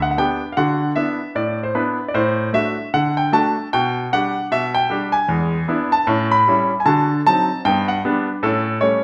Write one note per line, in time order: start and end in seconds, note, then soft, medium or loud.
0.00 0.12 D2 medium
0.00 0.10 F#5 medium
0.11 0.17 F#5 medium
0.18 0.39 B3 soft
0.18 0.39 D4 soft
0.18 0.40 G4 soft
0.18 0.46 G5 medium
0.52 0.57 F5 medium
0.57 0.90 D3 medium
0.57 0.80 F#4 soft
0.57 0.90 F#5 medium
0.96 1.17 B3 soft
0.96 1.18 D4 soft
0.96 1.18 E4 soft
0.96 1.29 E5 medium
1.35 1.69 A2 medium
1.35 1.58 D5 medium
1.63 1.74 C5 medium
1.75 1.96 B3 soft
1.75 1.97 D4 soft
1.75 1.97 E4 medium
1.75 2.03 B4 medium
2.08 2.14 D5 medium
2.14 2.48 A2 medium
2.14 2.48 C5 medium
2.53 2.75 A3 soft
2.53 2.76 D4 soft
2.53 2.76 F#4 soft
2.53 2.87 E5 medium
2.94 3.27 D3 medium
2.94 3.13 F#5 medium
3.17 3.30 G5 medium
3.33 3.54 A3 soft
3.33 3.54 D4 soft
3.33 3.54 F#4 soft
3.33 3.66 A5 medium
3.73 4.06 B2 medium
3.73 4.06 G5 medium
4.13 4.34 G3 soft
4.13 4.34 D4 soft
4.13 4.35 G4 medium
4.13 4.46 F#5 medium
4.51 4.84 B2 medium
4.51 4.71 E5 medium
4.75 5.08 G5 medium
4.90 5.11 G3 soft
4.90 5.12 D4 medium
4.90 5.12 G4 medium
5.12 5.79 G#5 medium
5.29 5.62 E2 medium
5.29 5.52 G#3 soft
5.68 5.90 B3 soft
5.68 5.90 D4 soft
5.68 5.90 E4 medium
5.92 6.25 A5 medium
6.07 6.41 A2 medium
6.07 6.30 C#4 medium
6.32 6.73 B5 medium
6.48 6.69 G3 medium
6.48 6.70 C#4 medium
6.48 6.70 E4 medium
6.80 6.86 G#5 medium
6.86 7.19 D3 medium
6.86 7.09 F#4 soft
6.86 7.19 A5 medium
7.26 7.48 F#3 soft
7.26 7.48 C4 soft
7.26 7.48 D#4 soft
7.26 7.59 A5 loud
7.65 7.98 G2 medium
7.65 7.88 B3 soft
7.65 7.85 G5 medium
7.88 8.02 F#5 medium
8.05 8.26 G3 soft
8.05 8.26 B3 medium
8.05 8.27 D4 medium
8.43 8.76 A2 medium
8.43 8.66 C#4 soft
8.43 8.77 A4 medium
8.81 9.03 G3 soft
8.81 9.04 A3 soft
8.81 9.04 C#4 medium
8.81 9.04 C#5 medium